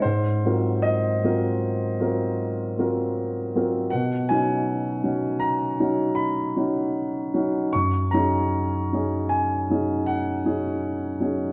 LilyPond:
\new Staff \with { instrumentName = "Grand piano" } { \time 5/4 \key fis \major \tempo 4 = 78 << { bis'4 dis''1 | fis''8 gis''4. ais''4 b''2 | cis'''8 ais''4. gis''4 fis''2 | } \\ { gis,8 <fis bis eis' ais'>4 <fis bis eis' ais'>4 <fis bis eis' ais'>4 <fis bis eis' ais'>4 <fis bis eis' ais'>8 | b,8 <fis cis' dis' fis'>4 <fis cis' dis' fis'>4 <fis cis' dis' fis'>4 <fis cis' dis' fis'>4 <fis cis' dis' fis'>8 | fis,8 <fis cis' dis' gis'>4 <fis cis' dis' gis'>4 <fis cis' dis' gis'>4 <fis cis' dis' gis'>4 <fis cis' dis' gis'>8 | } >> }